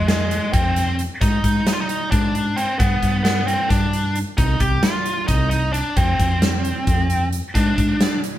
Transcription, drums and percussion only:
0.08 snare loud
0.08 closed hi-hat medium
0.31 closed hi-hat medium
0.54 kick loud
0.54 closed hi-hat medium
0.76 snare soft
0.76 closed hi-hat medium
0.99 closed hi-hat medium
1.21 kick loud
1.21 closed hi-hat medium
1.44 kick medium
1.44 closed hi-hat medium
1.67 snare loud
1.67 closed hi-hat medium
1.89 closed hi-hat medium
2.12 kick loud
2.12 closed hi-hat medium
2.35 closed hi-hat medium
2.58 closed hi-hat medium
2.80 kick loud
2.80 closed hi-hat medium
3.03 kick medium
3.03 snare soft
3.03 closed hi-hat medium
3.25 snare loud
3.25 closed hi-hat medium
3.48 closed hi-hat soft
3.70 kick medium
3.70 closed hi-hat medium
3.93 closed hi-hat medium
4.16 closed hi-hat medium
4.38 kick loud
4.38 closed hi-hat medium
4.60 kick medium
4.60 closed hi-hat medium
4.83 snare loud
4.83 closed hi-hat medium
5.06 closed hi-hat medium
5.28 kick loud
5.28 closed hi-hat medium
5.51 closed hi-hat medium
5.74 closed hi-hat medium
5.97 kick loud
5.97 closed hi-hat medium
6.20 kick medium
6.20 closed hi-hat medium
6.42 snare loud
6.42 closed hi-hat medium
6.65 closed hi-hat medium
6.87 kick medium
6.87 closed hi-hat medium
7.10 closed hi-hat medium
7.33 closed hi-hat soft
7.55 kick medium
7.55 closed hi-hat medium
7.78 kick medium
7.78 closed hi-hat medium
8.01 snare loud
8.01 closed hi-hat medium
8.24 closed hi-hat medium

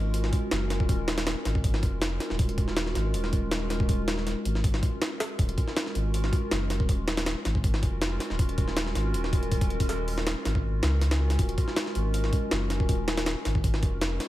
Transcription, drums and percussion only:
0.14 open hi-hat medium
0.24 snare soft
0.33 kick loud
0.33 open hi-hat medium
0.51 snare loud
0.51 open hi-hat medium
0.70 snare medium
0.70 open hi-hat medium
0.80 kick loud
0.89 kick loud
0.89 open hi-hat medium
1.08 snare loud
1.08 open hi-hat medium
1.18 snare loud
1.18 open hi-hat medium
1.27 snare loud
1.27 open hi-hat medium
1.45 snare medium
1.45 open hi-hat medium
1.55 kick loud
1.64 kick loud
1.64 open hi-hat medium
1.74 snare medium
1.83 kick loud
1.83 open hi-hat medium
2.02 snare loud
2.02 open hi-hat medium
2.20 snare soft
2.20 open hi-hat medium
2.30 snare soft
2.39 kick loud
2.39 open hi-hat medium
2.49 closed hi-hat soft
2.58 kick loud
2.58 open hi-hat medium
2.68 snare soft
2.77 snare loud
2.77 open hi-hat medium
2.86 snare soft
2.95 snare soft
2.95 open hi-hat medium
3.14 open hi-hat medium
3.24 snare soft
3.33 kick loud
3.33 open hi-hat medium
3.51 snare loud
3.51 open hi-hat medium
3.70 snare medium
3.70 open hi-hat medium
3.80 kick loud
3.89 kick loud
3.89 open hi-hat medium
4.08 snare loud
4.08 open hi-hat medium
4.18 snare soft
4.27 snare soft
4.27 open hi-hat medium
4.45 open hi-hat medium
4.55 snare soft
4.64 kick loud
4.64 open hi-hat medium
4.74 snare medium
4.83 kick loud
4.83 open hi-hat medium
5.02 snare loud
5.02 open hi-hat medium
5.20 snare loud
5.20 open hi-hat medium
5.39 kick loud
5.39 open hi-hat medium
5.49 closed hi-hat soft
5.58 kick loud
5.58 open hi-hat medium
5.68 snare soft
5.77 snare loud
5.77 open hi-hat medium
5.86 snare soft
5.95 open hi-hat medium
6.14 open hi-hat medium
6.24 snare soft
6.33 kick loud
6.33 open hi-hat medium
6.51 snare loud
6.51 open hi-hat medium
6.70 snare medium
6.70 open hi-hat medium
6.80 kick loud
6.89 kick loud
6.89 open hi-hat medium
7.08 snare loud
7.08 open hi-hat medium
7.17 snare loud
7.17 open hi-hat medium
7.26 snare loud
7.26 open hi-hat medium
7.45 snare medium
7.45 open hi-hat medium
7.55 kick loud
7.64 kick loud
7.64 open hi-hat medium
7.74 snare medium
7.83 kick loud
7.83 open hi-hat medium
8.02 snare loud
8.02 open hi-hat medium
8.20 snare soft
8.20 open hi-hat medium
8.30 snare soft
8.39 kick loud
8.39 open hi-hat medium
8.49 closed hi-hat soft
8.58 kick loud
8.58 open hi-hat medium
8.68 snare soft
8.77 snare loud
8.77 open hi-hat medium
8.87 snare soft
8.95 snare soft
8.95 open hi-hat medium
9.14 open hi-hat medium
9.24 snare soft
9.33 kick loud
9.33 open hi-hat medium
9.43 closed hi-hat soft
9.52 kick medium
9.52 open hi-hat medium
9.61 kick loud
9.61 open hi-hat medium
9.70 closed hi-hat soft
9.80 kick medium
9.80 open hi-hat medium
9.89 snare soft
9.89 open hi-hat medium
10.08 open hi-hat medium
10.18 snare medium
10.27 snare loud
10.27 open hi-hat medium
10.45 snare medium
10.45 open hi-hat medium
10.55 kick loud
10.83 snare loud
10.83 open hi-hat medium
11.02 snare soft
11.02 open hi-hat medium
11.11 snare loud
11.11 open hi-hat medium
11.30 snare soft
11.30 open hi-hat medium
11.39 kick loud
11.39 open hi-hat medium
11.49 closed hi-hat soft
11.58 kick loud
11.58 open hi-hat medium
11.68 snare soft
11.76 snare loud
11.76 open hi-hat medium
11.86 snare soft
11.95 open hi-hat medium
12.14 open hi-hat medium
12.24 snare soft
12.33 kick loud
12.33 open hi-hat medium
12.51 snare loud
12.51 open hi-hat medium
12.70 snare medium
12.70 open hi-hat medium
12.80 kick loud
12.89 kick loud
12.89 open hi-hat medium
13.08 snare loud
13.08 open hi-hat medium
13.17 snare loud
13.17 open hi-hat medium
13.26 snare loud
13.26 open hi-hat medium
13.45 snare medium
13.45 open hi-hat medium
13.55 kick loud
13.64 kick loud
13.64 open hi-hat medium
13.74 snare medium
13.83 kick loud
13.83 open hi-hat medium
14.01 snare loud
14.01 open hi-hat medium
14.20 snare medium
14.20 open hi-hat medium

